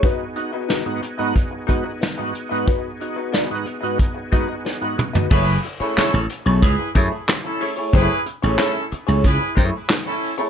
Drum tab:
CC |----------------|----------------|x---------------|----------------|
HH |x-x-x-x-x-x-x-x-|x-x-x-x-x-x-----|--x-x-x-x-x-x-o-|x-x-x-x-x-x-x-o-|
CP |----------------|----------------|----x-------x---|----x-------x---|
SD |----o-------o---|----o-------o---|----o-------o---|----o-------o---|
T2 |----------------|--------------o-|----------------|----------------|
FT |----------------|---------------o|----------------|----------------|
BD |o-------o-o-----|o-------o-o-----|o-------o-o-----|o-------o-o-----|